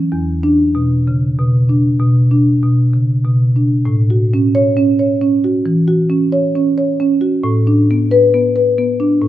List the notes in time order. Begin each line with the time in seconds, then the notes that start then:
Already playing: C#4
0.12 E2
0.43 D4
0.75 B2
1.07 C#3
1.39 B2
1.69 D4
2.00 B2
2.31 D4
2.63 B2
2.93 C#3
3.25 B2
3.56 D4
3.85 A2
4.10 F#4
4.34 C#4
4.55 C#5
4.77 C#4
4.99 C#5
5.21 C#4
5.44 F#4
5.66 E3
5.88 F#4
6.10 C#4
6.32 C#5
6.56 C#4
6.78 C#5
7.00 C#4
7.21 F#4
7.44 A2
7.67 D4
7.91 B3
8.11 B4
8.34 B3
8.56 B4
8.78 B3
9.00 D4
9.22 A2